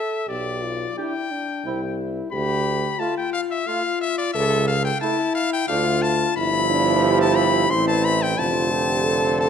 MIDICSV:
0, 0, Header, 1, 6, 480
1, 0, Start_track
1, 0, Tempo, 676437
1, 198, Time_signature, 3, 2, 24, 8
1, 6736, End_track
2, 0, Start_track
2, 0, Title_t, "Trumpet"
2, 0, Program_c, 0, 56
2, 0, Note_on_c, 0, 76, 109
2, 202, Note_off_c, 0, 76, 0
2, 205, Note_on_c, 0, 74, 104
2, 683, Note_off_c, 0, 74, 0
2, 696, Note_on_c, 0, 79, 106
2, 1401, Note_off_c, 0, 79, 0
2, 1648, Note_on_c, 0, 83, 116
2, 2122, Note_on_c, 0, 81, 106
2, 2133, Note_off_c, 0, 83, 0
2, 2243, Note_off_c, 0, 81, 0
2, 2253, Note_on_c, 0, 79, 107
2, 2359, Note_off_c, 0, 79, 0
2, 2364, Note_on_c, 0, 77, 123
2, 2418, Note_off_c, 0, 77, 0
2, 2491, Note_on_c, 0, 76, 119
2, 2603, Note_on_c, 0, 77, 126
2, 2613, Note_off_c, 0, 76, 0
2, 2842, Note_off_c, 0, 77, 0
2, 2846, Note_on_c, 0, 76, 124
2, 2961, Note_off_c, 0, 76, 0
2, 2965, Note_on_c, 0, 74, 121
2, 3072, Note_off_c, 0, 74, 0
2, 3076, Note_on_c, 0, 76, 121
2, 3313, Note_off_c, 0, 76, 0
2, 3317, Note_on_c, 0, 77, 127
2, 3434, Note_off_c, 0, 77, 0
2, 3439, Note_on_c, 0, 79, 117
2, 3548, Note_off_c, 0, 79, 0
2, 3552, Note_on_c, 0, 81, 116
2, 3790, Note_off_c, 0, 81, 0
2, 3796, Note_on_c, 0, 77, 127
2, 3915, Note_off_c, 0, 77, 0
2, 3925, Note_on_c, 0, 79, 127
2, 4026, Note_off_c, 0, 79, 0
2, 4030, Note_on_c, 0, 77, 127
2, 4273, Note_on_c, 0, 81, 127
2, 4283, Note_off_c, 0, 77, 0
2, 4511, Note_off_c, 0, 81, 0
2, 4515, Note_on_c, 0, 83, 127
2, 5097, Note_off_c, 0, 83, 0
2, 5113, Note_on_c, 0, 81, 127
2, 5218, Note_on_c, 0, 83, 127
2, 5229, Note_off_c, 0, 81, 0
2, 5464, Note_on_c, 0, 84, 127
2, 5475, Note_off_c, 0, 83, 0
2, 5584, Note_off_c, 0, 84, 0
2, 5588, Note_on_c, 0, 81, 127
2, 5710, Note_on_c, 0, 83, 127
2, 5721, Note_off_c, 0, 81, 0
2, 5835, Note_on_c, 0, 79, 124
2, 5846, Note_off_c, 0, 83, 0
2, 5947, Note_on_c, 0, 81, 127
2, 5958, Note_off_c, 0, 79, 0
2, 6669, Note_off_c, 0, 81, 0
2, 6674, Note_on_c, 0, 81, 120
2, 6736, Note_off_c, 0, 81, 0
2, 6736, End_track
3, 0, Start_track
3, 0, Title_t, "French horn"
3, 0, Program_c, 1, 60
3, 0, Note_on_c, 1, 69, 116
3, 200, Note_on_c, 1, 67, 83
3, 210, Note_off_c, 1, 69, 0
3, 445, Note_on_c, 1, 65, 94
3, 455, Note_off_c, 1, 67, 0
3, 686, Note_off_c, 1, 65, 0
3, 690, Note_on_c, 1, 64, 97
3, 933, Note_on_c, 1, 62, 83
3, 943, Note_off_c, 1, 64, 0
3, 1176, Note_on_c, 1, 64, 92
3, 1187, Note_off_c, 1, 62, 0
3, 1645, Note_off_c, 1, 64, 0
3, 1649, Note_on_c, 1, 67, 114
3, 2133, Note_on_c, 1, 65, 93
3, 2143, Note_off_c, 1, 67, 0
3, 2602, Note_off_c, 1, 65, 0
3, 2607, Note_on_c, 1, 65, 100
3, 3077, Note_off_c, 1, 65, 0
3, 3087, Note_on_c, 1, 69, 123
3, 3390, Note_off_c, 1, 69, 0
3, 3563, Note_on_c, 1, 64, 114
3, 4012, Note_off_c, 1, 64, 0
3, 4040, Note_on_c, 1, 65, 117
3, 4507, Note_off_c, 1, 65, 0
3, 4519, Note_on_c, 1, 64, 107
3, 4750, Note_off_c, 1, 64, 0
3, 4757, Note_on_c, 1, 62, 109
3, 4995, Note_on_c, 1, 67, 124
3, 5005, Note_off_c, 1, 62, 0
3, 5470, Note_on_c, 1, 64, 110
3, 5480, Note_off_c, 1, 67, 0
3, 5946, Note_off_c, 1, 64, 0
3, 5951, Note_on_c, 1, 65, 105
3, 6189, Note_on_c, 1, 67, 112
3, 6199, Note_off_c, 1, 65, 0
3, 6424, Note_on_c, 1, 69, 118
3, 6434, Note_off_c, 1, 67, 0
3, 6736, Note_off_c, 1, 69, 0
3, 6736, End_track
4, 0, Start_track
4, 0, Title_t, "Flugelhorn"
4, 0, Program_c, 2, 56
4, 690, Note_on_c, 2, 67, 75
4, 803, Note_off_c, 2, 67, 0
4, 1175, Note_on_c, 2, 64, 81
4, 1288, Note_off_c, 2, 64, 0
4, 2127, Note_on_c, 2, 65, 85
4, 2241, Note_off_c, 2, 65, 0
4, 2606, Note_on_c, 2, 65, 86
4, 2720, Note_off_c, 2, 65, 0
4, 3558, Note_on_c, 2, 64, 90
4, 3671, Note_off_c, 2, 64, 0
4, 4034, Note_on_c, 2, 62, 91
4, 4147, Note_off_c, 2, 62, 0
4, 4512, Note_on_c, 2, 64, 114
4, 5467, Note_on_c, 2, 60, 109
4, 5478, Note_off_c, 2, 64, 0
4, 5940, Note_off_c, 2, 60, 0
4, 5945, Note_on_c, 2, 60, 106
4, 6736, Note_off_c, 2, 60, 0
4, 6736, End_track
5, 0, Start_track
5, 0, Title_t, "Trombone"
5, 0, Program_c, 3, 57
5, 689, Note_on_c, 3, 62, 69
5, 802, Note_off_c, 3, 62, 0
5, 1171, Note_on_c, 3, 60, 73
5, 1285, Note_off_c, 3, 60, 0
5, 2121, Note_on_c, 3, 57, 83
5, 2235, Note_off_c, 3, 57, 0
5, 2603, Note_on_c, 3, 57, 80
5, 2716, Note_off_c, 3, 57, 0
5, 3563, Note_on_c, 3, 57, 96
5, 3677, Note_off_c, 3, 57, 0
5, 4038, Note_on_c, 3, 57, 90
5, 4152, Note_off_c, 3, 57, 0
5, 4511, Note_on_c, 3, 53, 122
5, 5463, Note_on_c, 3, 52, 97
5, 5473, Note_off_c, 3, 53, 0
5, 5943, Note_off_c, 3, 52, 0
5, 5948, Note_on_c, 3, 50, 106
5, 6736, Note_off_c, 3, 50, 0
5, 6736, End_track
6, 0, Start_track
6, 0, Title_t, "Tuba"
6, 0, Program_c, 4, 58
6, 202, Note_on_c, 4, 35, 85
6, 609, Note_off_c, 4, 35, 0
6, 1170, Note_on_c, 4, 36, 95
6, 1570, Note_off_c, 4, 36, 0
6, 1649, Note_on_c, 4, 38, 102
6, 2045, Note_off_c, 4, 38, 0
6, 3085, Note_on_c, 4, 37, 115
6, 3482, Note_off_c, 4, 37, 0
6, 4040, Note_on_c, 4, 38, 105
6, 4437, Note_off_c, 4, 38, 0
6, 4518, Note_on_c, 4, 31, 110
6, 5441, Note_off_c, 4, 31, 0
6, 5466, Note_on_c, 4, 33, 110
6, 5949, Note_on_c, 4, 29, 104
6, 5960, Note_off_c, 4, 33, 0
6, 6736, Note_off_c, 4, 29, 0
6, 6736, End_track
0, 0, End_of_file